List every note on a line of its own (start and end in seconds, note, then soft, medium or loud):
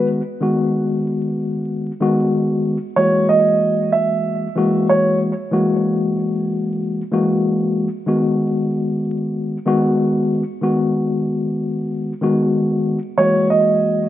0.00 0.20 D#3 medium
0.00 0.21 G#3 medium
0.00 0.21 B3 medium
0.00 0.21 F#4 loud
0.40 1.90 D#3 medium
0.40 1.91 G#3 medium
0.40 1.91 B3 medium
0.40 1.92 F#4 loud
2.00 2.76 D#3 medium
2.00 2.76 G#3 medium
2.00 2.77 B3 medium
2.00 2.77 F#4 loud
2.96 4.46 E3 medium
2.96 4.46 G#3 medium
2.96 4.47 A#3 medium
2.96 4.47 F#4 medium
2.96 3.25 C#5 medium
3.29 3.89 D#5 medium
3.92 4.84 E5 medium
4.56 5.31 E3 loud
4.56 5.32 G#3 medium
4.56 5.32 A#3 medium
4.56 5.32 F#4 loud
4.89 5.18 C#5 medium
5.51 7.01 E3 loud
5.51 7.02 G#3 medium
5.51 7.02 A#3 medium
5.51 7.02 F#4 loud
7.11 7.87 E3 medium
7.11 7.87 G#3 medium
7.11 7.88 A#3 medium
7.11 7.88 F#4 loud
8.06 9.56 D#3 medium
8.06 9.57 G#3 medium
8.06 9.57 B3 medium
8.06 9.57 F#4 loud
9.65 10.42 D#3 medium
9.65 10.42 G#3 medium
9.65 10.42 B3 loud
9.65 10.43 F#4 loud
10.61 12.12 D#3 medium
10.61 12.12 G#3 medium
10.61 12.12 B3 medium
10.61 12.13 F#4 loud
12.21 12.97 D#3 medium
12.21 12.98 G#3 medium
12.21 12.98 B3 medium
12.21 12.98 F#4 loud
13.17 14.09 E3 medium
13.17 14.09 G#3 medium
13.17 14.09 A#3 medium
13.17 14.09 F#4 loud
13.17 13.46 C#5 medium
13.50 14.09 D#5 medium